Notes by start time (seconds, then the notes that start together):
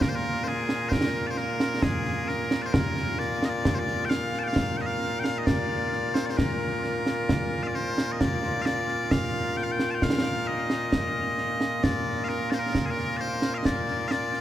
Already playing: A#2 A#3 F4
0.01 A#4, concert bass drum, snare
0.09 C5
0.15 A#4
0.44 C5, snare
0.48 G#4
0.69 snare
0.89 A#4 C5, concert bass drum, snare
1.27 C5 D5
1.37 A#4, snare
1.60 snare
1.82 G#4, concert bass drum, snare
2.06 snare
2.28 A#4, snare
2.51 snare
2.62 C5 D5
2.73 A#4, concert bass drum, snare
2.97 snare
3.19 D5, snare
3.43 D#5, snare
3.49 D5
3.65 concert bass drum, snare
3.75 C5
3.79 D5
3.88 snare
4.05 G5
4.09 F5, snare
4.33 snare
4.39 A5
4.43 G5
4.47 F5
4.56 concert bass drum, snare
4.77 G5, snare
4.81 D#5
4.86 F5
5.02 snare
5.19 G5
5.24 F5, snare
5.38 D#5
5.46 D5, concert bass drum, snare
5.93 snare
6.14 C5, snare
6.26 D5
6.30 C5
6.37 A#4, concert bass drum, snare
6.84 snare
7.06 snare
7.29 concert bass drum, snare
7.63 F5
7.67 D5
7.75 C5, snare
7.98 snare
8.12 D#5
8.20 D5, concert bass drum, snare
8.43 snare
8.62 D5 F5
8.66 snare
8.89 snare
9.11 F5, concert bass drum, snare
9.57 G5, snare
9.63 F5
9.71 G5
9.79 snare
9.91 G5 A5
10.02 F5, concert bass drum, snare
10.47 D#5
10.70 snare
10.92 concert bass drum, snare
11.38 snare
11.61 snare
11.83 D5, concert bass drum, snare
12.24 F5
12.29 A#4, snare
12.50 C5 D5, snare
12.59 A#4
12.75 concert bass drum, snare
12.86 G#4
12.90 A#4
12.97 snare
13.17 C5 D5
13.42 snare
13.54 D#5 F5
13.65 D5, concert bass drum, snare
13.88 snare
14.08 D5 F5, snare
14.34 snare